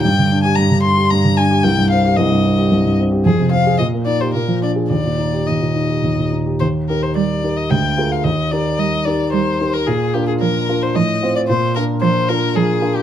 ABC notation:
X:1
M:3/4
L:1/16
Q:1/4=111
K:Eb
V:1 name="Violin"
g3 a b2 c'2 b2 a2 | g2 f2 e6 z2 | A2 f2 e2 d c B2 d2 | d4 e6 z2 |
c2 B c d3 e g3 f | e2 d2 e2 d2 c3 B | A2 G A B3 c e3 d | c2 B2 c2 B2 A3 G |]
V:2 name="Grand piano"
G,, D, D G G,, D, D G G,, D, D G | C,, G,, C G C,, G,, C G C,, G,, C G | F,, C, C A B,, B, E G B,, F, D A | E,, B,, E G E,, B,, E G E,, B,, E G |
E,,2 [EGB]4 [EGB]2 D,,2 [FAB]2 | E,,2 [EGB]4 [EGB]4 [EGB]2 | B,,2 [DFB]4 [DFB]2 =A,,2 [CFc]2 | B,,2 [DFB]4 [DFB]4 [DFB]2 |]
V:3 name="Cello" clef=bass
z12 | z12 | z12 | z12 |
z4 G,4 A,4 | z4 G,4 G,4 | z4 F,4 F,4 | z4 F,4 F,4 |]